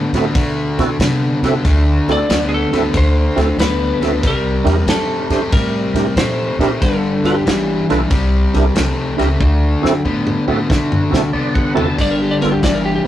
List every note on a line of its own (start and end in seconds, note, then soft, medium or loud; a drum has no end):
0.13 0.29 A2 medium
0.13 0.33 D3 medium
0.13 0.34 B3 medium
0.13 0.25 C4 medium
0.13 0.25 E4 medium
0.13 0.25 F#4 medium
0.13 0.25 A4 medium
0.13 snare soft
0.13 ride medium
0.35 0.67 B2 medium
0.35 0.95 D3 medium
0.35 0.96 A3 medium
0.35 kick loud
0.35 snare soft
0.35 ride medium
0.78 0.94 B2 medium
0.78 0.89 C4 medium
0.78 0.89 E4 medium
0.78 0.89 F#4 medium
0.78 0.90 A4 medium
0.78 snare soft
0.78 ride medium
0.99 1.32 C3 medium
0.99 1.39 D3 medium
0.99 1.39 B3 medium
0.99 snare loud
0.99 ride medium
1.42 1.59 C3 medium
1.42 1.62 D3 medium
1.42 1.63 B3 medium
1.42 1.54 C4 medium
1.42 1.54 E4 medium
1.42 1.54 F#4 medium
1.42 1.55 A4 medium
1.42 snare soft
1.42 ride medium
1.65 1.97 D2 medium
1.65 2.25 D3 medium
1.65 2.25 A3 medium
1.65 kick loud
1.65 snare soft
1.65 ride medium
2.08 2.24 D2 medium
2.08 2.19 C4 medium
2.08 2.19 E4 medium
2.08 2.19 F#4 medium
2.08 2.19 A4 medium
2.08 2.52 D5 loud
2.08 snare soft
2.08 ride medium
2.29 2.61 D2 medium
2.29 2.68 D3 medium
2.29 2.68 B3 medium
2.29 snare loud
2.29 ride medium
2.49 2.51 G#4 medium
2.54 2.97 A4 medium
2.72 2.88 D2 medium
2.72 2.92 D3 medium
2.72 2.92 B3 medium
2.72 2.83 C4 medium
2.72 2.83 E4 medium
2.72 2.83 F#4 medium
2.72 2.83 A4 medium
2.72 snare soft
2.72 ride medium
2.94 3.26 D2 medium
2.94 3.55 D3 medium
2.94 3.55 A3 medium
2.94 3.60 C5 medium
2.94 kick loud
2.94 snare soft
2.94 ride medium
3.36 3.53 D2 medium
3.36 3.47 C4 medium
3.36 3.47 E4 medium
3.36 3.48 F#4 medium
3.36 3.48 A4 medium
3.36 snare soft
3.36 ride medium
3.57 3.89 D2 medium
3.57 3.97 D3 medium
3.57 3.98 B3 medium
3.57 4.20 B4 medium
3.57 snare loud
3.57 ride medium
4.00 4.17 D2 medium
4.00 4.21 D3 medium
4.00 4.21 B3 medium
4.00 4.12 C4 medium
4.00 4.13 E4 medium
4.00 4.13 F#4 medium
4.00 4.13 A4 medium
4.00 snare soft
4.00 ride medium
4.23 4.56 C2 medium
4.23 4.84 C3 medium
4.23 4.84 G3 medium
4.23 4.86 A#4 medium
4.23 kick loud
4.23 snare soft
4.23 ride medium
4.64 4.81 E2 medium
4.64 4.76 D4 medium
4.64 4.76 E4 medium
4.64 4.77 G4 medium
4.64 4.77 A#4 medium
4.64 snare soft
4.64 ride medium
4.86 5.19 G2 medium
4.86 5.26 C3 medium
4.86 5.26 A3 medium
4.86 5.53 A4 medium
4.86 snare loud
4.86 ride medium
5.30 5.46 G2 medium
5.30 5.51 C3 medium
5.30 5.51 A3 medium
5.30 5.41 D4 medium
5.30 5.41 E4 medium
5.30 5.42 G4 medium
5.30 5.42 C5 medium
5.30 snare soft
5.30 ride medium
5.52 5.84 A2 medium
5.52 6.13 C3 medium
5.52 6.13 G3 medium
5.52 6.19 A#4 medium
5.52 kick loud
5.52 snare soft
5.52 ride medium
5.94 6.11 A2 medium
5.94 6.06 D4 medium
5.94 6.06 E4 medium
5.94 6.06 G4 medium
5.94 6.06 A#4 medium
5.94 snare soft
5.94 ride medium
6.16 6.49 A#2 medium
6.16 6.56 C3 medium
6.16 6.56 A3 loud
6.16 6.78 C5 medium
6.16 snare loud
6.16 ride medium
6.59 6.75 A#2 medium
6.59 6.79 C3 medium
6.59 6.80 A3 medium
6.59 6.70 D4 medium
6.59 6.71 E4 medium
6.59 6.71 G4 medium
6.59 6.71 A#4 medium
6.59 snare soft
6.59 ride medium
6.81 7.14 G1 medium
6.81 7.42 G2 medium
6.81 7.42 D3 medium
6.81 7.26 A4 medium
6.81 kick loud
6.81 snare soft
6.81 ride medium
7.24 7.40 G1 medium
7.24 7.35 D4 medium
7.24 7.35 F4 medium
7.24 7.86 G4 medium
7.24 7.36 A4 medium
7.24 7.36 B4 medium
7.24 snare soft
7.24 ride medium
7.46 7.78 G1 medium
7.46 7.85 G2 medium
7.46 7.85 E3 medium
7.46 snare loud
7.46 ride medium
7.89 8.06 B1 medium
7.89 8.09 G2 medium
7.89 8.09 E3 medium
7.89 8.00 D4 medium
7.89 8.00 F4 medium
7.89 8.01 A4 medium
7.89 8.01 B4 medium
7.89 snare soft
7.89 ride medium
8.10 8.43 C2 medium
8.10 8.71 C3 medium
8.10 8.71 G3 medium
8.10 kick loud
8.10 snare soft
8.10 ride medium
8.54 8.70 C2 medium
8.54 8.65 D4 medium
8.54 8.65 E4 medium
8.54 8.65 G4 medium
8.54 8.65 A#4 medium
8.54 snare soft
8.54 ride medium
8.75 9.08 C2 medium
8.75 9.14 C3 medium
8.75 9.14 A3 medium
8.75 snare loud
8.75 ride medium
9.17 9.35 C#2 medium
9.17 9.37 C3 medium
9.17 9.38 A3 medium
9.17 9.29 D4 medium
9.17 9.29 E4 medium
9.17 9.29 G4 medium
9.17 9.29 A#4 loud
9.17 snare soft
9.17 ride medium
9.40 9.72 D2 medium
9.40 10.00 D3 medium
9.40 10.01 A3 medium
9.40 kick loud
9.82 9.99 F#2 medium
9.82 9.93 C4 medium
9.82 9.94 E4 medium
9.82 9.94 F#4 medium
9.82 9.94 A4 loud
9.82 snare medium
10.05 10.37 A2 medium
10.05 10.43 D3 medium
10.05 10.44 B3 medium
10.05 mid tom medium
10.27 mid tom medium
10.47 10.64 A2 medium
10.47 10.67 D3 medium
10.47 10.67 B3 medium
10.47 10.58 C4 medium
10.47 10.59 E4 medium
10.47 10.59 F#4 medium
10.47 10.59 A4 medium
10.69 11.02 B2 medium
10.69 11.30 D3 medium
10.69 11.30 A3 medium
10.69 kick loud
10.69 snare medium
10.92 mid tom medium
11.10 11.28 B2 medium
11.10 11.22 C4 medium
11.10 11.22 E4 medium
11.10 11.22 F#4 medium
11.10 11.23 A4 medium
11.14 snare medium
11.33 11.66 C3 medium
11.33 11.72 D3 medium
11.33 11.72 B3 medium
11.33 11.53 D5 medium
11.54 11.75 F#5 medium
11.54 kick medium
11.74 11.93 C3 medium
11.74 11.96 D3 medium
11.74 11.96 B3 medium
11.74 11.86 C4 medium
11.74 11.87 E4 medium
11.74 11.87 F#4 medium
11.74 11.87 A4 medium
11.74 11.96 A5 medium
11.74 floor tom medium
11.98 12.30 G1 medium
11.98 12.58 G2 medium
11.98 12.59 D3 medium
11.98 12.14 D5 medium
11.98 kick medium
11.98 snare soft
11.98 crash medium
12.11 12.22 A#4 medium
12.22 12.42 G4 medium
12.31 12.36 D5 medium
12.41 12.57 G1 medium
12.41 12.52 B3 medium
12.41 12.53 D4 medium
12.41 12.53 F4 medium
12.41 12.53 A4 medium
12.41 12.52 A#4 medium
12.41 snare soft
12.41 ride medium
12.52 12.61 G4 medium
12.62 12.95 G1 medium
12.62 13.01 G2 medium
12.62 13.02 E3 medium
12.62 12.77 D5 medium
12.62 kick medium
12.62 snare loud
12.62 ride medium
12.75 12.83 A#4 medium
12.85 12.94 G4 medium
12.96 13.07 G4 medium